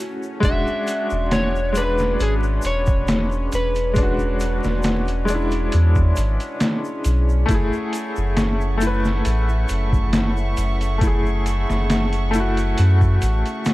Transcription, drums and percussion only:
0.23 shaker
0.43 kick, closed hi-hat, shaker
0.67 shaker
0.87 closed hi-hat, shaker
1.10 shaker
1.31 snare, closed hi-hat, shaker
1.56 shaker
1.75 closed hi-hat, shaker
1.98 snare, shaker
2.20 closed hi-hat, shaker
2.43 shaker
2.62 closed hi-hat, shaker
2.86 kick, shaker
3.08 snare, closed hi-hat, shaker
3.32 shaker
3.52 closed hi-hat, shaker
3.75 closed hi-hat, shaker
3.95 kick, closed hi-hat, shaker
4.19 shaker
4.40 closed hi-hat, shaker
4.64 snare, shaker
4.83 snare, closed hi-hat, shaker
5.08 closed hi-hat, shaker
5.28 closed hi-hat, shaker
5.51 closed hi-hat, shaker
5.72 closed hi-hat, shaker
5.95 kick, shaker
6.16 closed hi-hat, shaker
6.40 closed hi-hat, shaker
6.60 snare, closed hi-hat, shaker
6.85 shaker
7.04 closed hi-hat, shaker
7.29 shaker
7.49 kick, closed hi-hat, shaker
7.73 shaker
7.93 closed hi-hat, shaker
8.16 shaker
8.37 snare, closed hi-hat, shaker
8.61 shaker
8.81 closed hi-hat, shaker
9.05 snare, shaker
9.25 closed hi-hat, shaker
9.49 shaker
9.69 closed hi-hat, shaker
9.93 kick, shaker
10.13 snare, closed hi-hat, shaker
10.37 shaker
10.57 closed hi-hat, shaker
10.81 closed hi-hat, shaker
11.01 kick, closed hi-hat, shaker
11.26 shaker
11.46 closed hi-hat, shaker
11.70 snare, shaker
11.90 snare, closed hi-hat, shaker
12.13 closed hi-hat, shaker
12.33 closed hi-hat, shaker
12.57 closed hi-hat, shaker
12.78 closed hi-hat, shaker
13.01 kick, shaker
13.22 closed hi-hat, shaker
13.46 closed hi-hat, shaker
13.65 snare, closed hi-hat, shaker

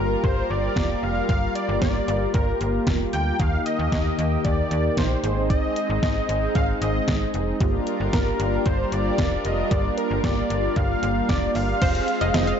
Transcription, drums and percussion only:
0.24 kick
0.76 kick, snare
1.29 kick, closed hi-hat
1.55 closed hi-hat
1.82 kick, snare, closed hi-hat
2.08 closed hi-hat
2.34 kick, closed hi-hat
2.61 closed hi-hat
2.87 kick, snare, closed hi-hat
3.13 closed hi-hat
3.40 kick, closed hi-hat
3.66 closed hi-hat
3.92 kick, snare, closed hi-hat
4.19 closed hi-hat
4.45 kick, closed hi-hat
4.71 closed hi-hat
4.97 kick, snare, closed hi-hat
5.24 closed hi-hat
5.50 kick, closed hi-hat
5.76 closed hi-hat
6.03 kick, snare, closed hi-hat
6.29 closed hi-hat
6.55 kick, closed hi-hat
6.82 closed hi-hat
7.08 kick, snare, closed hi-hat
7.34 closed hi-hat
7.60 kick, closed hi-hat
7.87 closed hi-hat
8.13 kick, snare, closed hi-hat
8.40 closed hi-hat
8.66 kick, closed hi-hat
8.92 closed hi-hat
9.18 kick, snare, closed hi-hat
9.45 closed hi-hat
9.71 kick, closed hi-hat
9.98 closed hi-hat
10.24 kick, snare, closed hi-hat
10.50 closed hi-hat
10.76 kick, closed hi-hat
11.03 closed hi-hat
11.29 kick, snare, closed hi-hat
11.55 open hi-hat
11.82 kick, closed hi-hat, crash
11.95 closed hi-hat
12.08 closed hi-hat
12.21 closed hi-hat
12.34 snare, closed hi-hat
12.47 closed hi-hat

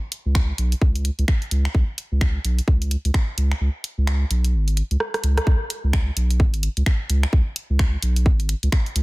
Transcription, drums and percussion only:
0.12 closed hi-hat
0.35 finger snap, kick, closed hi-hat
0.58 closed hi-hat
0.72 closed hi-hat
0.82 kick
0.95 closed hi-hat
1.05 closed hi-hat
1.19 closed hi-hat
1.28 finger snap, kick
1.42 closed hi-hat
1.51 closed hi-hat
1.65 finger snap
1.75 kick
1.98 closed hi-hat
2.21 finger snap, kick, closed hi-hat
2.45 closed hi-hat
2.59 closed hi-hat
2.68 kick
2.82 closed hi-hat
2.91 closed hi-hat
3.05 closed hi-hat
3.14 finger snap, kick
3.38 closed hi-hat
3.52 finger snap
3.84 closed hi-hat
4.07 finger snap, closed hi-hat
4.31 closed hi-hat
4.44 closed hi-hat
4.68 closed hi-hat
4.77 closed hi-hat
4.91 closed hi-hat
5.00 cross-stick
5.14 cross-stick, closed hi-hat
5.24 closed hi-hat
5.38 cross-stick, closed hi-hat
5.47 kick
5.70 closed hi-hat
5.93 finger snap, kick
6.17 closed hi-hat
6.30 closed hi-hat
6.40 kick
6.54 closed hi-hat
6.63 closed hi-hat
6.77 closed hi-hat
6.86 finger snap, kick
7.10 closed hi-hat
7.23 finger snap
7.33 kick
7.56 closed hi-hat
7.79 finger snap, kick
8.02 closed hi-hat
8.16 closed hi-hat
8.26 kick
8.40 closed hi-hat
8.49 closed hi-hat
8.63 closed hi-hat
8.72 finger snap, kick
8.86 closed hi-hat
8.96 closed hi-hat

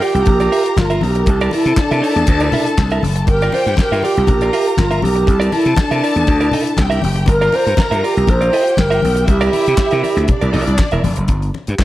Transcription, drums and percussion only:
0.02 open hi-hat
0.15 closed hi-hat
0.26 kick, closed hi-hat, muted conga, low conga
0.40 closed hi-hat
0.52 open hi-hat
0.66 closed hi-hat
0.77 kick, snare, clap, high conga
0.90 closed hi-hat
1.01 open hi-hat, high conga
1.15 closed hi-hat
1.26 kick, closed hi-hat, muted conga
1.41 closed hi-hat
1.51 open hi-hat, muted conga
1.66 closed hi-hat
1.76 kick, snare, clap, high conga
1.91 closed hi-hat
2.04 open hi-hat
2.16 closed hi-hat
2.27 kick, closed hi-hat, muted conga
2.40 closed hi-hat
2.52 open hi-hat, low conga
2.66 closed hi-hat
2.78 kick, snare, clap, high conga
2.90 closed hi-hat
3.03 open hi-hat, high conga
3.16 closed hi-hat
3.27 kick, closed hi-hat, muted conga
3.42 closed hi-hat
3.52 open hi-hat, muted conga
3.67 closed hi-hat
3.77 kick, snare, clap, high conga
3.93 closed hi-hat
4.03 open hi-hat, muted conga
4.17 closed hi-hat
4.27 kick, closed hi-hat, muted conga, low conga
4.41 closed hi-hat
4.53 open hi-hat
4.68 closed hi-hat
4.77 kick, snare, clap, high conga
4.91 closed hi-hat
5.02 open hi-hat, high conga
5.16 closed hi-hat
5.27 kick, closed hi-hat, muted conga
5.41 closed hi-hat
5.52 open hi-hat, muted conga
5.66 closed hi-hat
5.76 kick, snare, clap, high conga
5.91 closed hi-hat
6.04 open hi-hat
6.17 closed hi-hat
6.27 kick, closed hi-hat, muted conga
6.41 closed hi-hat
6.51 open hi-hat, low conga
6.67 closed hi-hat
6.77 kick, snare, clap, high conga
6.91 closed hi-hat
7.02 open hi-hat, high conga
7.15 closed hi-hat
7.26 kick, closed hi-hat, muted conga
7.41 closed hi-hat
7.52 open hi-hat, muted conga
7.67 closed hi-hat
7.77 kick, snare, clap, high conga
7.92 closed hi-hat
8.04 open hi-hat
8.17 closed hi-hat
8.27 kick, closed hi-hat, muted conga, low conga
8.41 closed hi-hat
8.53 open hi-hat
8.67 closed hi-hat
8.77 kick, snare, clap, high conga
8.92 closed hi-hat
9.02 open hi-hat, high conga
9.17 closed hi-hat
9.28 kick, closed hi-hat, muted conga
9.41 closed hi-hat
9.53 open hi-hat, muted conga
9.66 closed hi-hat
9.78 kick, snare, clap, high conga
9.91 closed hi-hat
10.04 open hi-hat, muted conga
10.17 closed hi-hat
10.28 kick, closed hi-hat, muted conga, low conga
10.41 closed hi-hat
10.53 open hi-hat, low conga
10.67 closed hi-hat
10.78 kick, snare, clap, high conga
10.91 closed hi-hat
11.04 open hi-hat, high conga
11.16 closed hi-hat
11.28 kick, closed hi-hat, muted conga
11.42 closed hi-hat
11.54 muted conga
11.67 closed hi-hat
11.79 kick, snare, clap, high conga

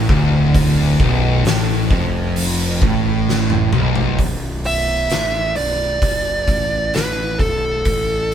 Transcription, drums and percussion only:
0.09 kick
0.55 kick, open hi-hat
1.00 kick
1.45 snare, open hi-hat
1.91 kick
2.36 open hi-hat
2.82 kick
3.29 snare
3.50 high tom
3.73 mid tom
3.96 floor tom
4.19 kick, open hi-hat
4.64 open hi-hat
5.10 snare, open hi-hat
5.56 open hi-hat
6.02 kick, open hi-hat
6.48 kick, open hi-hat
6.94 snare, open hi-hat
7.39 kick, open hi-hat
7.85 kick, open hi-hat

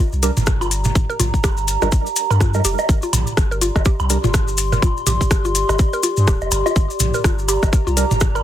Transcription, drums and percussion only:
0.13 maracas
0.23 open hi-hat, maracas
0.37 mid tom, maracas
0.47 kick, cross-stick, maracas
0.61 high woodblock, maracas
0.71 open hi-hat, maracas
0.84 mid tom, maracas
0.95 kick, maracas
1.10 maracas
1.20 mid tom, open hi-hat, maracas
1.34 kick, maracas
1.44 kick, cross-stick, high woodblock, maracas
1.57 maracas
1.68 open hi-hat, maracas
1.82 cross-stick, low woodblock, maracas
1.92 kick, maracas
2.06 maracas
2.16 open hi-hat, maracas
2.31 high woodblock, maracas
2.40 kick, cross-stick, maracas
2.54 low woodblock, maracas
2.65 open hi-hat, maracas
2.78 low woodblock, maracas
2.89 kick, maracas
3.02 maracas
3.13 mid tom, open hi-hat, high woodblock, maracas
3.27 maracas
3.37 kick, cross-stick, maracas
3.52 maracas
3.61 open hi-hat, maracas
3.76 kick, cross-stick, low woodblock, maracas
3.85 kick, maracas
4.00 high woodblock, maracas
4.10 open hi-hat, maracas
4.24 mid tom, maracas
4.34 kick, cross-stick, maracas
4.48 maracas
4.58 open hi-hat, maracas
4.72 mid tom, maracas
4.82 kick, high woodblock, maracas
4.97 maracas
5.07 mid tom, open hi-hat, maracas
5.21 kick, maracas
5.31 kick, cross-stick, maracas
5.45 maracas
5.55 open hi-hat, maracas
5.69 cross-stick, high woodblock, low woodblock, maracas
5.79 kick, maracas
5.93 maracas
6.03 open hi-hat, maracas
6.17 maracas
6.27 kick, cross-stick, maracas
6.41 low woodblock, maracas
6.51 open hi-hat, high woodblock, maracas
6.66 low woodblock, maracas
6.76 kick, maracas
6.90 maracas
7.00 mid tom, open hi-hat, maracas
7.14 maracas
7.24 kick, cross-stick, maracas
7.39 maracas
7.48 open hi-hat, high woodblock, maracas
7.63 kick, cross-stick, low woodblock, maracas
7.73 kick, maracas
7.87 maracas
7.97 open hi-hat, maracas
8.11 mid tom, maracas
8.20 kick, cross-stick, maracas
8.35 high woodblock, maracas

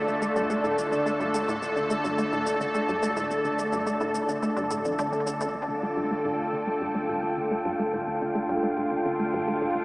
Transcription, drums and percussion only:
0.08 high conga, shaker
0.22 shaker
0.36 shaker
0.50 shaker
0.64 high conga, shaker
0.78 shaker
0.92 shaker
1.06 high conga, shaker
1.20 shaker
1.34 shaker
1.49 shaker
1.63 high conga, shaker
1.77 shaker
1.90 shaker
2.04 high conga, shaker
2.18 shaker
2.33 shaker
2.47 shaker
2.61 high conga, shaker
2.75 shaker
2.89 shaker
3.03 high conga, shaker
3.17 shaker
3.31 shaker
3.45 shaker
3.59 high conga, shaker
3.73 shaker
3.87 shaker
4.01 high conga, shaker
4.15 shaker
4.29 shaker
4.43 shaker
4.57 high conga, shaker
4.71 shaker
4.85 shaker
4.99 high conga, shaker
5.13 shaker
5.27 shaker
5.41 shaker

